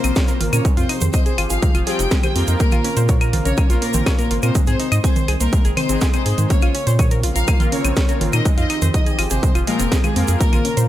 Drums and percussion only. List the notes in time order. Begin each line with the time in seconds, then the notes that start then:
0.04 closed hi-hat, claves, shaker
0.16 kick, snare, closed hi-hat, shaker
0.28 closed hi-hat, shaker
0.41 open hi-hat, low conga
0.53 closed hi-hat, claves, shaker
0.65 kick, closed hi-hat, shaker
0.77 closed hi-hat, shaker
0.89 open hi-hat, claves
1.01 closed hi-hat, low conga, shaker
1.13 kick, closed hi-hat, shaker
1.26 closed hi-hat, shaker
1.38 open hi-hat, claves
1.50 closed hi-hat, shaker
1.62 kick, closed hi-hat, low conga, shaker
1.75 closed hi-hat, claves, shaker
1.87 open hi-hat
1.99 closed hi-hat, shaker
2.11 kick, snare, closed hi-hat, shaker
2.23 closed hi-hat, low conga, claves, shaker
2.36 open hi-hat
2.47 closed hi-hat, shaker
2.60 kick, closed hi-hat, shaker
2.71 closed hi-hat, low conga, claves, shaker
2.85 open hi-hat
2.97 closed hi-hat, shaker
3.09 kick, closed hi-hat, shaker
3.21 closed hi-hat, claves, shaker
3.33 open hi-hat, low conga
3.45 closed hi-hat, shaker
3.57 kick, closed hi-hat, claves, shaker
3.70 closed hi-hat, shaker
3.82 open hi-hat
3.93 closed hi-hat, low conga, shaker
4.06 kick, snare, closed hi-hat, claves, shaker
4.19 closed hi-hat, shaker
4.31 open hi-hat
4.43 closed hi-hat, claves, shaker
4.55 kick, closed hi-hat, low conga, shaker
4.67 closed hi-hat, shaker
4.80 open hi-hat
4.92 closed hi-hat, claves, shaker
5.04 kick, closed hi-hat, shaker
5.16 closed hi-hat, low conga, shaker
5.28 open hi-hat, claves
5.41 closed hi-hat, shaker
5.53 kick, closed hi-hat, shaker
5.65 closed hi-hat, shaker
5.77 open hi-hat, low conga, claves
5.89 closed hi-hat, shaker
6.01 kick, snare, closed hi-hat, shaker
6.13 closed hi-hat, claves, shaker
6.26 open hi-hat
6.38 closed hi-hat, low conga, shaker
6.50 kick, closed hi-hat, shaker
6.62 closed hi-hat, claves, shaker
6.75 open hi-hat
6.87 closed hi-hat, shaker
6.99 kick, closed hi-hat, low conga, claves, shaker
7.11 closed hi-hat, shaker
7.23 open hi-hat
7.36 closed hi-hat, shaker
7.48 kick, closed hi-hat, claves, shaker
7.60 closed hi-hat, low conga, shaker
7.72 open hi-hat
7.84 closed hi-hat, claves, shaker
7.96 kick, snare, closed hi-hat, shaker
8.09 closed hi-hat, shaker
8.21 open hi-hat, low conga
8.33 closed hi-hat, claves, shaker
8.45 kick, closed hi-hat, shaker
8.58 closed hi-hat, shaker
8.70 open hi-hat, claves
8.82 closed hi-hat, low conga, shaker
8.94 kick, closed hi-hat, shaker
9.06 closed hi-hat, shaker
9.19 open hi-hat, claves
9.30 closed hi-hat, shaker
9.43 kick, closed hi-hat, low conga, shaker
9.55 closed hi-hat, claves, shaker
9.67 open hi-hat
9.79 closed hi-hat, shaker
9.92 kick, snare, closed hi-hat, shaker
10.04 closed hi-hat, low conga, claves, shaker
10.16 open hi-hat
10.28 closed hi-hat, shaker
10.41 kick, closed hi-hat, shaker
10.53 closed hi-hat, low conga, claves, shaker
10.65 open hi-hat
10.77 closed hi-hat, shaker